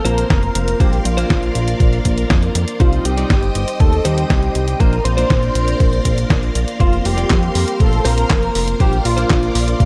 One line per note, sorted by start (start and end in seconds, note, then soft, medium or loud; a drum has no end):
0.00 0.78 A#4 medium
0.00 0.78 C5 medium
0.00 2.76 F5 medium
0.00 2.76 C6 medium
0.05 0.25 A#1 loud
0.05 0.77 A#3 medium
0.05 0.77 C4 medium
0.05 0.77 F4 medium
0.05 0.82 A#4 loud
0.05 0.77 C5 medium
0.05 closed hi-hat medium
0.18 closed hi-hat medium
0.30 0.50 F1 medium
0.30 kick loud
0.30 snare loud
0.30 closed hi-hat medium
0.43 closed hi-hat soft
0.55 0.75 F1 medium
0.55 closed hi-hat medium
0.68 closed hi-hat medium
0.80 1.00 A#1 medium
0.80 0.97 A#3 medium
0.80 0.97 D4 medium
0.80 0.97 F4 medium
0.80 1.07 G4 loud
0.80 2.78 A#4 medium
0.80 0.97 C5 medium
0.80 2.78 D5 medium
0.80 kick loud
0.80 closed hi-hat soft
0.93 closed hi-hat soft
1.05 1.25 A#1 medium
1.05 2.55 F4 medium
1.05 closed hi-hat medium
1.17 2.77 A#3 medium
1.17 2.77 D4 medium
1.17 2.77 F4 medium
1.17 2.77 C5 medium
1.17 closed hi-hat medium
1.30 1.50 A#1 medium
1.30 kick loud
1.30 snare loud
1.30 closed hi-hat medium
1.43 closed hi-hat soft
1.55 1.75 A#1 medium
1.55 closed hi-hat medium
1.68 closed hi-hat medium
1.80 2.00 A#1 medium
1.80 kick loud
1.80 closed hi-hat soft
1.93 closed hi-hat soft
2.05 2.25 A#1 medium
2.05 kick medium
2.05 closed hi-hat medium
2.18 closed hi-hat medium
2.30 2.50 F2 medium
2.30 kick loud
2.30 snare loud
2.30 closed hi-hat soft
2.43 closed hi-hat soft
2.55 2.65 F2 medium
2.55 closed hi-hat medium
2.68 closed hi-hat soft
2.80 3.00 C2 medium
2.80 3.15 G3 medium
2.80 3.15 C4 medium
2.80 3.15 D#4 medium
2.80 3.07 F4 medium
2.80 4.78 C5 medium
2.80 3.15 C5 medium
2.80 4.78 D#5 medium
2.80 4.78 G5 medium
2.80 4.78 D#6 medium
2.80 kick loud
2.80 closed hi-hat soft
2.93 closed hi-hat soft
3.05 3.25 C2 medium
3.05 3.79 G4 medium
3.05 closed hi-hat medium
3.17 3.34 G3 medium
3.17 3.34 C4 medium
3.17 3.34 D#4 medium
3.17 3.34 D5 loud
3.17 closed hi-hat soft
3.30 3.50 G1 medium
3.30 kick loud
3.30 snare loud
3.30 closed hi-hat soft
3.43 closed hi-hat soft
3.55 3.65 G1 medium
3.55 closed hi-hat medium
3.68 closed hi-hat soft
3.80 4.00 D#2 medium
3.80 4.06 A4 loud
3.80 kick loud
3.80 closed hi-hat soft
3.93 closed hi-hat soft
4.05 4.25 D#2 loud
4.05 4.77 G3 medium
4.05 4.77 C4 medium
4.05 4.77 D#4 medium
4.05 4.81 G4 loud
4.05 4.77 C5 loud
4.05 closed hi-hat medium
4.18 closed hi-hat soft
4.30 4.50 C2 medium
4.30 kick loud
4.30 snare loud
4.30 closed hi-hat soft
4.43 closed hi-hat soft
4.55 4.75 C2 medium
4.55 closed hi-hat medium
4.68 closed hi-hat soft
4.80 5.00 A#1 medium
4.80 4.97 A#3 medium
4.80 4.97 D4 medium
4.80 4.97 F4 medium
4.80 5.04 A#4 loud
4.80 6.78 A#4 medium
4.80 4.97 C5 medium
4.80 6.78 D5 medium
4.80 9.85 F5 medium
4.80 6.78 C6 medium
4.80 kick loud
4.80 closed hi-hat soft
4.93 closed hi-hat soft
5.05 5.25 A#1 medium
5.05 6.51 C5 loud
5.05 closed hi-hat medium
5.17 6.77 A#3 medium
5.17 6.77 D4 medium
5.17 6.77 F4 medium
5.17 6.77 C5 medium
5.17 closed hi-hat soft
5.30 5.50 A#1 medium
5.30 kick loud
5.30 snare loud
5.30 closed hi-hat soft
5.43 closed hi-hat soft
5.55 5.75 A#1 medium
5.55 closed hi-hat medium
5.68 closed hi-hat soft
5.80 6.00 A#1 medium
5.80 kick loud
5.80 closed hi-hat soft
5.93 closed hi-hat soft
6.05 6.25 A#1 medium
6.05 kick medium
6.05 closed hi-hat medium
6.18 closed hi-hat soft
6.30 6.50 A#1 medium
6.30 kick loud
6.30 snare loud
6.30 closed hi-hat soft
6.43 closed hi-hat soft
6.55 6.65 A#1 medium
6.55 closed hi-hat medium
6.68 closed hi-hat soft
6.80 7.00 F1 medium
6.80 7.15 A#3 medium
6.80 7.15 C4 medium
6.80 7.07 F4 loud
6.80 7.15 F4 medium
6.80 9.85 A#4 medium
6.80 8.78 C5 medium
6.80 7.15 C5 medium
6.80 8.78 C6 medium
6.80 kick loud
6.80 closed hi-hat soft
6.93 closed hi-hat soft
7.05 7.25 F1 medium
7.05 7.82 G4 loud
7.05 open hi-hat loud
7.17 7.34 A#3 medium
7.17 7.34 C4 medium
7.17 7.34 F4 medium
7.17 7.34 D5 loud
7.17 closed hi-hat soft
7.30 7.50 F2 medium
7.30 kick loud
7.30 snare loud
7.30 clap medium
7.30 closed hi-hat soft
7.43 closed hi-hat soft
7.55 7.65 F2 medium
7.55 open hi-hat loud
7.68 closed hi-hat soft
7.80 8.00 A#1 medium
7.80 8.07 A4 loud
7.80 kick loud
7.80 closed hi-hat soft
7.93 closed hi-hat soft
8.05 8.25 A#1 loud
8.05 8.77 A#3 medium
8.05 8.77 C4 medium
8.05 8.77 F4 medium
8.05 8.80 A#4 loud
8.05 8.77 C5 loud
8.05 open hi-hat loud
8.18 closed hi-hat soft
8.30 8.50 F1 medium
8.30 kick loud
8.30 snare loud
8.30 clap medium
8.30 closed hi-hat soft
8.43 closed hi-hat soft
8.55 8.75 F1 medium
8.55 open hi-hat loud
8.68 closed hi-hat soft
8.79 9.00 A#1 medium
8.79 8.97 A#3 medium
8.79 8.97 D4 medium
8.79 8.97 F4 medium
8.79 9.04 G4 loud
8.79 8.97 C5 medium
8.79 9.85 D5 medium
8.79 9.85 C6 medium
8.79 kick loud
8.79 closed hi-hat soft
8.93 closed hi-hat soft
9.05 9.25 A#1 medium
9.05 9.85 F4 medium
9.05 open hi-hat loud
9.17 9.85 A#3 medium
9.17 9.85 D4 medium
9.17 9.85 F4 medium
9.17 9.85 C5 medium
9.17 closed hi-hat soft
9.30 9.50 A#1 medium
9.30 kick loud
9.30 snare loud
9.30 clap medium
9.30 closed hi-hat soft
9.43 closed hi-hat soft
9.55 9.75 A#1 medium
9.55 open hi-hat loud
9.68 closed hi-hat soft
9.80 9.85 A#1 medium
9.80 kick loud
9.80 closed hi-hat soft